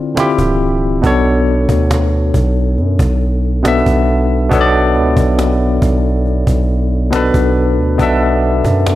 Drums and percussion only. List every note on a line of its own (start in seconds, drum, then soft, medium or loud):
0.17 cajon slap loud
0.38 cajon bass medium
1.04 cajon bass loud
1.47 cajon slap soft
1.69 cajon bass loud
1.91 cajon slap loud
2.34 cajon bass medium
2.78 cajon slap soft
2.99 cajon bass medium
3.21 cajon slap soft
3.65 cajon slap loud
3.86 cajon bass medium
4.08 cajon slap soft
4.51 cajon bass loud
4.95 cajon slap soft
5.17 cajon bass loud
5.39 cajon slap loud
5.82 cajon bass medium
6.26 cajon slap soft
6.47 cajon bass loud
6.69 cajon slap soft
7.13 cajon slap loud
7.34 cajon bass loud
7.99 cajon bass loud
8.43 cajon slap soft
8.65 cajon bass medium
8.86 cajon slap loud